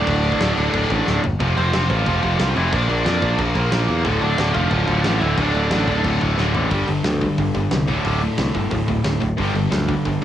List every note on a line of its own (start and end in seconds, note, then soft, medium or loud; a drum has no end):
0.00 0.72 D2 loud
0.00 0.73 A2 loud
0.00 0.74 D3 loud
0.00 1.20 D4 medium
0.00 1.20 D5 loud
0.07 0.29 D1 loud
0.07 kick loud
0.07 crash medium
0.24 crash medium
0.32 kick medium
0.40 0.52 D1 medium
0.40 1.22 D2 medium
0.40 1.23 A2 loud
0.40 1.23 D3 loud
0.40 snare loud
0.40 crash medium
0.56 0.68 D1 loud
0.56 1.23 D2 medium
0.56 1.22 A2 medium
0.56 1.21 D3 medium
0.56 crash medium
0.73 0.85 D1 medium
0.73 0.89 D2 loud
0.73 0.90 A2 medium
0.73 0.88 D3 medium
0.73 kick loud
0.73 crash medium
0.90 1.01 A1 loud
0.90 1.23 D2 medium
0.90 1.23 A2 medium
0.90 1.22 D3 medium
0.90 kick medium
0.90 crash medium
1.07 1.18 D1 medium
1.07 snare medium
1.24 1.35 G1 medium
1.24 floor tom medium
1.40 1.55 F1 loud
1.40 1.56 F2 loud
1.40 1.55 C3 medium
1.40 1.55 F3 loud
1.40 kick loud
1.40 crash medium
1.56 1.72 F1 loud
1.56 1.71 F2 medium
1.56 1.72 C3 medium
1.56 1.74 F3 medium
1.56 1.91 C4 medium
1.56 1.87 C5 medium
1.56 crash medium
1.73 1.89 F1 medium
1.73 1.90 F2 medium
1.73 1.89 C3 medium
1.73 1.89 F3 medium
1.73 snare loud
1.73 crash medium
1.90 2.04 A1 loud
1.90 2.05 F2 medium
1.90 2.05 C3 medium
1.90 2.06 F3 loud
1.90 2.52 F3 medium
1.90 2.52 F4 medium
1.90 kick loud
1.90 crash medium
2.06 2.21 F1 medium
2.06 2.21 F2 medium
2.06 2.21 C3 loud
2.06 2.21 F3 loud
2.06 kick loud
2.06 crash medium
2.21 2.38 F1 loud
2.21 2.38 F2 medium
2.21 2.38 C3 medium
2.21 2.40 F3 medium
2.21 kick medium
2.21 crash medium
2.39 2.54 C2 medium
2.39 2.56 F2 loud
2.39 2.55 C3 medium
2.39 2.55 F3 loud
2.39 snare loud
2.39 crash medium
2.55 2.71 F1 medium
2.55 2.71 F2 medium
2.55 2.71 C3 medium
2.55 2.72 E3 medium
2.55 2.72 F3 medium
2.55 2.73 E4 medium
2.55 crash medium
2.71 2.87 A#1 loud
2.71 2.89 A#2 medium
2.71 2.89 F3 loud
2.71 2.87 A#3 loud
2.71 3.39 D4 medium
2.71 3.35 D5 medium
2.71 kick loud
2.71 crash loud
2.88 3.04 A#1 loud
2.88 3.04 A#2 medium
2.88 3.06 F3 medium
2.88 3.05 A#3 loud
2.88 crash medium
3.05 3.21 F2 medium
3.05 3.22 A#2 medium
3.05 3.22 F3 medium
3.05 3.21 A#3 medium
3.05 snare loud
3.05 crash medium
3.22 3.37 A#1 loud
3.22 3.36 A#2 loud
3.22 3.38 F3 loud
3.22 3.38 A#3 loud
3.22 kick medium
3.22 crash medium
3.38 3.54 A#1 medium
3.38 3.55 A#2 medium
3.38 3.55 F3 loud
3.38 3.53 A#3 loud
3.38 kick loud
3.38 crash medium
3.55 3.70 A#1 loud
3.55 3.70 A#2 medium
3.55 3.71 F3 medium
3.55 3.71 A#3 medium
3.55 kick loud
3.55 crash medium
3.71 3.87 A#1 medium
3.71 3.88 A#2 medium
3.71 3.88 F3 medium
3.71 3.87 A#3 loud
3.71 snare loud
3.71 crash medium
3.88 4.06 E2 medium
3.88 4.03 A#2 medium
3.88 4.04 F3 medium
3.88 4.04 A#3 medium
3.88 crash medium
4.04 4.20 D1 medium
4.04 4.22 D2 loud
4.04 4.21 A2 loud
4.04 4.21 D3 loud
4.04 kick loud
4.04 crash medium
4.21 4.37 D1 medium
4.21 4.37 D2 medium
4.21 4.37 A2 medium
4.21 4.38 D3 medium
4.21 4.52 D4 medium
4.21 4.53 D5 medium
4.21 crash medium
4.38 4.53 D1 loud
4.38 4.55 D2 medium
4.38 4.54 A2 loud
4.38 4.54 D3 medium
4.38 snare loud
4.38 crash medium
4.53 4.70 F1 loud
4.53 4.71 D2 medium
4.53 4.71 A2 loud
4.53 4.72 D3 loud
4.53 5.18 F3 medium
4.53 5.19 F4 loud
4.53 kick medium
4.53 crash medium
4.71 4.86 D1 loud
4.71 4.88 D2 loud
4.71 4.87 A2 loud
4.71 4.86 D3 loud
4.71 kick loud
4.71 crash medium
4.87 5.03 D1 loud
4.87 5.03 D2 medium
4.87 5.04 A2 medium
4.87 5.04 D3 loud
4.87 kick medium
4.87 crash medium
5.04 5.20 A1 medium
5.04 5.22 D2 loud
5.04 5.21 A2 loud
5.04 5.20 D3 loud
5.04 snare loud
5.04 crash medium
5.19 5.36 D1 medium
5.19 5.36 D2 medium
5.19 5.37 A2 medium
5.19 5.37 D3 medium
5.19 5.37 E3 medium
5.19 5.36 E4 loud
5.19 crash medium
5.36 5.53 D1 loud
5.36 5.54 D2 loud
5.36 5.54 A2 medium
5.36 5.53 D3 loud
5.36 6.00 D4 medium
5.36 6.01 D5 medium
5.36 kick loud
5.36 crash medium
5.54 5.69 D1 medium
5.54 5.69 D2 medium
5.54 5.70 A2 medium
5.54 5.71 D3 loud
5.54 crash medium
5.71 5.86 A1 medium
5.71 5.88 D2 medium
5.71 5.87 A2 medium
5.71 5.86 D3 medium
5.71 snare loud
5.71 crash loud
5.87 6.03 D1 loud
5.87 6.03 D2 loud
5.87 6.04 A2 loud
5.87 6.05 D3 loud
5.87 kick medium
5.87 crash medium
6.04 6.20 D1 medium
6.04 6.21 D2 medium
6.04 6.20 A2 loud
6.04 6.19 D3 loud
6.04 kick loud
6.04 crash medium
6.20 6.36 D1 medium
6.20 6.36 D2 medium
6.20 6.37 A2 medium
6.20 6.38 D3 loud
6.20 kick medium
6.20 crash medium
6.37 6.53 D1 medium
6.37 6.54 D2 medium
6.37 6.54 A2 medium
6.37 6.53 D3 loud
6.37 snare medium
6.54 6.70 A1 medium
6.54 6.70 D2 medium
6.54 6.70 A2 medium
6.54 6.69 D3 loud
6.54 floor tom medium
6.70 6.82 G1 medium
6.70 6.85 G2 medium
6.70 6.86 D3 loud
6.70 6.87 G3 loud
6.70 kick loud
6.70 open hi-hat medium
6.87 6.99 G1 medium
6.87 7.02 G2 medium
6.87 7.03 D3 medium
6.87 open hi-hat medium
7.04 7.26 D2 medium
7.04 7.19 G2 medium
7.04 7.19 D3 medium
7.04 snare loud
7.04 open hi-hat medium
7.21 7.36 G2 medium
7.21 7.36 D3 medium
7.21 kick medium
7.21 open hi-hat medium
7.38 7.49 G1 medium
7.38 7.53 G2 medium
7.38 7.53 D3 medium
7.38 kick loud
7.38 open hi-hat medium
7.55 7.66 G1 medium
7.55 7.70 G2 medium
7.55 7.70 D3 medium
7.55 kick medium
7.55 open hi-hat medium
7.71 7.90 C2 medium
7.71 7.86 G2 medium
7.71 7.86 D3 medium
7.71 snare loud
7.71 open hi-hat medium
7.88 7.99 D1 medium
7.88 8.04 D2 medium
7.88 8.04 A2 medium
7.88 8.04 D3 loud
7.88 kick medium
7.88 open hi-hat medium
8.05 8.27 D1 medium
8.05 8.21 D2 medium
8.05 8.21 A2 medium
8.05 8.21 D3 loud
8.05 kick loud
8.05 open hi-hat medium
8.21 8.37 D2 medium
8.21 8.37 A2 medium
8.21 open hi-hat medium
8.38 8.50 C2 medium
8.38 8.53 D2 medium
8.38 8.53 A2 medium
8.38 snare loud
8.38 open hi-hat loud
8.54 8.66 G1 loud
8.54 8.70 D2 medium
8.54 8.70 A2 medium
8.54 kick medium
8.54 open hi-hat medium
8.71 8.82 D1 medium
8.71 8.87 D2 medium
8.71 8.87 A2 medium
8.71 kick loud
8.71 open hi-hat medium
8.88 8.99 D1 medium
8.88 9.03 D2 medium
8.88 9.03 A2 medium
8.88 kick medium
8.88 open hi-hat medium
9.04 9.16 D1 medium
9.04 9.19 D2 medium
9.04 9.20 A2 medium
9.04 snare loud
9.04 open hi-hat medium
9.20 9.33 D1 medium
9.20 9.36 D2 medium
9.20 9.36 A2 medium
9.20 kick medium
9.20 open hi-hat medium
9.37 9.49 G1 medium
9.37 9.53 G2 medium
9.37 9.54 D3 medium
9.37 9.54 G3 loud
9.37 kick loud
9.37 open hi-hat medium
9.54 9.66 G1 medium
9.54 9.69 G2 medium
9.54 9.70 D3 medium
9.54 open hi-hat medium
9.71 9.94 D2 medium
9.71 9.86 G2 medium
9.71 9.87 D3 medium
9.71 snare loud
9.71 open hi-hat medium
9.88 10.04 G2 medium
9.88 10.04 D3 medium
9.88 kick medium
9.88 open hi-hat medium
10.05 10.17 G1 medium
10.05 10.21 G2 medium
10.05 10.21 D3 loud
10.05 kick medium
10.05 open hi-hat medium